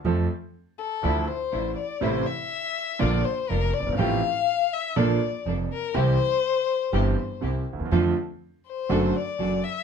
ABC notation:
X:1
M:4/4
L:1/16
Q:1/4=122
K:F
V:1 name="Violin"
z6 A4 c4 d2 | c2 e6 d2 c2 B2 d2 | f6 e2 d4 z2 B2 | c12 z4 |
z6 c4 d4 e2 |]
V:2 name="String section"
[A,CF]2 z6 [F,DE]2 z2 [F,DE]2 z2 | [A,CE]2 z6 [B,DF]2 z2 [B,DF]2 z2 | [A,FG]2 z6 [B,DA]2 z2 [B,DA]2 z2 | [CEG]2 z6 [CEG]2 z2 [CEG]2 z2 |
[DFA]2 z6 [D^FA]2 z2 [DFA]2 z2 |]
V:3 name="Grand piano" clef=bass
[F,,F,A,CA]2 z6 [D,,D,F,A,E]2 z2 [A,,,A,,]2 z2 | [A,,,A,,C,E,A,E]2 z6 [B,,,B,,D,F,B,F]2 z2 [F,,,F,,]2 z/2 _G,,,/2 =G,,,/2 _A,,,/2 | [A,,,A,,F,A,CG]2 z6 [B,,,B,,F,B,DA]2 z2 [F,,,F,,]2 z2 | [C,,C,E,G,CG]2 z6 [G,,,G,,E,G,CG]2 z2 [C,,C,]2 z/2 D,,/2 _E,,/2 =E,,/2 |
[F,,D,F,A,CF]2 z6 [^F,,D,^F,A,^F]2 z2 [F,,F,]2 z2 |]
V:4 name="Upright bass" clef=bass
F,,3/2 z6 z/2 D,,3/2 z2 z/2 A,,,3/2 z2 z/2 | A,,,3/2 z6 z/2 B,,,3/2 z2 z/2 F,,,3/2 z _G,,,/2 =G,,,/2 _A,,,/2 | A,,,3/2 z6 z/2 B,,,3/2 z2 z/2 F,,,3/2 z2 z/2 | C,,3/2 z6 z/2 G,,,3/2 z2 z/2 C,,3/2 z D,,/2 _E,,/2 =E,,/2 |
F,,3/2 z6 z/2 ^F,,,3/2 z2 z/2 F,,,3/2 z2 z/2 |]